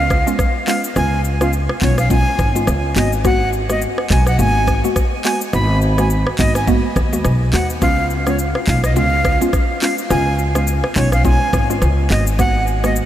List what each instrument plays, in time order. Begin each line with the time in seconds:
Already playing: upright bass C#2, synth pluck G#3 B3 C#4 F4, flute F5
0.10 kick, cross-stick, shaker
0.27 synth pluck G#3 B3 C#4 F4, shaker
0.39 kick, cross-stick, shaker
0.67 synth pluck G#3 B3 C#4 F4, flute F5, clap, open hi-hat, shaker
0.84 shaker
0.96 upright bass C#2, synth pluck G#3 B3 C#4 F4, flute G#5, cross-stick, shaker
1.24 shaker
1.41 synth pluck G#3 B3 C#4 F4, flute F5, cross-stick, shaker
1.53 shaker
1.69 cross-stick
1.82 upright bass B1, synth pluck G#3 B3 C#4 F4, flute C#5, kick, clap, open hi-hat, shaker
1.98 flute F5, cross-stick, shaker
2.10 synth pluck G#3 B3 C#4 F4, flute G#5, kick, shaker
2.39 upright bass G#1, kick, cross-stick, shaker
2.55 synth pluck G#3 B3 C#4 F4, shaker
2.67 upright bass C#2, cross-stick, shaker
2.96 upright bass G#1, synth pluck G#3 A#3 B3 F#4, flute D#5, clap, open hi-hat, shaker
3.13 shaker
3.24 synth pluck G#3 A#3 B3 F#4, flute F#5, kick, cross-stick, shaker
3.53 shaker
3.70 synth pluck G#3 A#3 B3 F#4, flute D#5, cross-stick, shaker
3.82 shaker
3.98 cross-stick
4.10 upright bass B1, synth pluck G#3 A#3 B3 F#4, flute G#5, kick, clap, open hi-hat, shaker
4.27 flute F#5, cross-stick, shaker
4.39 upright bass G#1, synth pluck G#3 A#3 B3 F#4, flute G#5, shaker
4.67 kick, cross-stick, shaker
4.84 synth pluck G#3 A#3 B3 F#4, shaker
4.96 kick, cross-stick, shaker
5.24 synth pluck G#3 A#3 B3 F#4, flute G#5, clap, open hi-hat, shaker
5.41 shaker
5.53 upright bass G#1, synth pluck G#3 A#3 B3 F#4, flute B5, cross-stick, shaker
5.82 shaker
5.98 synth pluck G#3 A#3 B3 F#4, flute G#5, cross-stick, shaker
6.10 shaker
6.27 cross-stick
6.39 upright bass G#1, synth pluck G#3 A#3 B3 F#4, flute D#5, kick, clap, open hi-hat, shaker
6.55 flute G#5, cross-stick, shaker
6.67 synth pluck G#3 A#3 B3 F#4, kick, shaker
6.96 upright bass D#2, kick, cross-stick, shaker
7.12 synth pluck G#3 A#3 B3 F#4, shaker
7.25 upright bass B1, cross-stick, shaker
7.53 upright bass D#2, synth pluck G#3 A#3 B3 F#4, flute F#5, clap, open hi-hat, shaker
7.70 shaker
7.82 upright bass C#2, synth pluck G#3 B3 C#4 F4, flute F5, kick, cross-stick, shaker
8.10 shaker
8.27 synth pluck G#3 B3 C#4 F4, flute C#5, cross-stick, shaker
8.39 shaker
8.55 cross-stick
8.67 upright bass B1, synth pluck G#3 B3 C#4 F4, flute F5, kick, clap, open hi-hat, shaker
8.84 flute D#5, cross-stick, shaker
8.96 upright bass C#2, synth pluck G#3 B3 C#4 F4, flute F5, shaker
9.25 kick, cross-stick, shaker
9.41 synth pluck G#3 B3 C#4 F4, shaker
9.53 kick, cross-stick, shaker
9.82 synth pluck G#3 B3 C#4 F4, flute F5, clap, open hi-hat, shaker
9.98 shaker
10.10 upright bass C#2, synth pluck G#3 B3 C#4 F4, flute G#5, cross-stick, shaker
10.39 shaker
10.55 synth pluck G#3 B3 C#4 F4, flute F5, cross-stick, shaker
10.67 shaker
10.84 cross-stick
10.96 upright bass B1, synth pluck G#3 B3 C#4 F4, flute C#5, kick, clap, open hi-hat, shaker
11.12 flute F5, cross-stick, shaker
11.24 synth pluck G#3 B3 C#4 F4, flute G#5, kick, shaker
11.53 upright bass G#1, kick, cross-stick, shaker
11.70 synth pluck G#3 B3 C#4 F4, shaker
11.82 upright bass C#2, cross-stick, shaker
12.10 upright bass G#1, synth pluck G#3 A#3 B3 F#4, flute D#5, clap, open hi-hat, shaker
12.27 shaker
12.39 synth pluck G#3 A#3 B3 F#4, flute F#5, kick, cross-stick, shaker
12.67 shaker
12.84 synth pluck G#3 A#3 B3 F#4, flute D#5, cross-stick, shaker
12.96 shaker